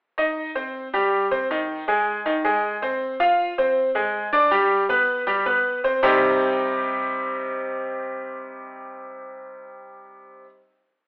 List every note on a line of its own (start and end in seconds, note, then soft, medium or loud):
0.18 0.49 D#4 medium
0.18 0.49 D#5 medium
0.55 0.87 C4 medium
0.55 0.87 C5 medium
0.93 1.25 G3 medium
0.93 1.25 G4 medium
1.31 1.47 C4 medium
1.31 1.47 C5 medium
1.51 1.81 D#3 medium
1.51 1.82 D#4 medium
1.88 2.19 G#3 medium
1.88 2.19 G#4 medium
2.26 2.41 D#3 medium
2.26 2.41 D#4 medium
2.44 2.75 G#3 medium
2.44 2.76 G#4 medium
2.82 3.13 C4 medium
2.82 3.13 C5 medium
3.20 3.51 F4 medium
3.20 3.51 F5 medium
3.58 3.89 C4 medium
3.58 3.89 C5 medium
3.95 4.26 G#3 medium
3.95 4.26 G#4 medium
4.33 4.48 D4 medium
4.33 4.49 D5 medium
4.51 4.83 G3 medium
4.51 4.83 G4 medium
4.89 5.20 B3 medium
4.89 5.21 B4 medium
5.27 5.43 G3 medium
5.27 5.43 G4 medium
5.46 5.77 B3 medium
5.46 5.77 B4 medium
5.84 6.00 C4 medium
5.84 6.00 C5 medium
6.03 10.43 C3 medium
6.03 10.44 G3 medium
6.03 10.44 C4 medium
6.03 10.44 D#4 medium
6.03 10.44 G4 medium
6.03 10.44 C5 medium